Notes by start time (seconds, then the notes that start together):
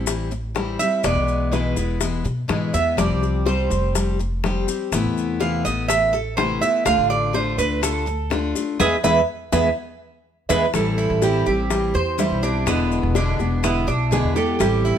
Already playing: A1
0.06 E3 G3 C4 E4, high bongo, maracas
0.31 muted steel-string acoustic guitar stroke, maracas
0.55 E3 G3 C4 E4, high bongo, low bongo, maracas
0.79 G3 C4 E4 E5, high bongo, maracas
1.03 E1 B2 E3 G#3 B3 E4 D5, high bongo, maracas
1.16 B1
1.28 maracas
1.52 B2 E3 G#3 B3 E4 B4, high bongo, maracas
1.76 E1 G#3 B3 E4, high bongo, maracas
2.00 E3 G#3 B3 E4, high bongo, maracas
2.24 B2, muted steel-string acoustic guitar stroke, high bongo, maracas
2.48 G#2 B2 E3 G#3 B3 E4, high bongo, low bongo, maracas
2.73 E2 G#3 B3 E4 E5, high bongo, maracas
2.97 F1 F3 G3 C4 G4 D5, high bongo, maracas
3.10 C2
3.23 high bongo, maracas
3.46 F3 G3 C4 G4 C5, high bongo, maracas
3.70 F1 G3 C4 G4, high bongo, maracas
3.95 F3 G3 C4 G4, high bongo, maracas
4.19 muted steel-string acoustic guitar stroke, maracas
4.44 F3 G3 C4 G4, high bongo, low bongo, maracas
4.67 G3 C4 G4, high bongo, maracas
4.92 A1 C3 E3 A3 B3 E4, high bongo, maracas
5.04 E2
5.18 maracas
5.40 C3 E3 A3 B3 E4 F5, high bongo, maracas
5.65 A1 A3 B3 E4 D#5, high bongo, maracas
5.88 E3 A3 B3 E4 E5, high bongo, maracas
6.13 A4, muted steel-string acoustic guitar stroke, high bongo, maracas
6.37 C3 E3 A3 B3 E4 C5, high bongo, low bongo, maracas
6.61 A3 B3 E4 E5, high bongo, maracas
6.85 D2 D3 A3 D4 F4 F5, high bongo, maracas
6.98 A1
7.10 D5, high bongo, maracas
7.33 D3 A3 D4 F4 C5, high bongo, maracas
7.57 D2 A3 D4 F4 B4, high bongo, maracas
7.81 D3 A3 D4 F4 A4, high bongo, maracas
8.06 muted steel-string acoustic guitar stroke, maracas
8.30 D3 A3 D4 F4, high bongo, low bongo, maracas
8.55 A3 D4 F4, high bongo, maracas
8.79 E2 E3 G#3 B3 G#4 B4 E5, low bongo, maracas
9.04 E2 E3 G#3 B3 G#4 B4 E5, low bongo, maracas
9.52 E2 E3 G#3 B3 G#4 B4 E5, low bongo, maracas
10.49 E2 E3 G#3 B3 G#4 B4 E5, low bongo, maracas
10.74 A1 E3 G3 C4 E4 A4, high bongo, maracas
10.98 E4, maracas
11.10 A1
11.22 E3 G3 C4 E4 G4, high bongo, maracas
11.46 A1 G3 C4 E4 G4, high bongo, maracas
11.70 E3 G3 C4 E4, high bongo, maracas
11.94 E2 C5, muted steel-string acoustic guitar stroke, high bongo, maracas
12.18 E3 G3 C4 E4, high bongo, low bongo, maracas
12.31 B1
12.42 G3 C4 D4 E4, high bongo, maracas
12.66 E1 B2 D3 G#3 B3 D4 E4, high bongo, maracas
12.92 maracas
13.03 E1
13.15 B2 D3 G#3 B3 D4 E4, high bongo, maracas
13.39 E1 G#3 B3 E4, high bongo, maracas
13.63 D3 G#3 B3 E4, high bongo, maracas
13.87 B1 D4, muted steel-string acoustic guitar stroke, high bongo, maracas
14.11 B2 D3 G#3 B3 E4 G#4, high bongo, low bongo, maracas
14.24 E2
14.35 G#3 B3 E4 G4 A4, high bongo, maracas
14.59 A1 E3 G3 C4 E4 G4, high bongo, maracas
14.85 E4, maracas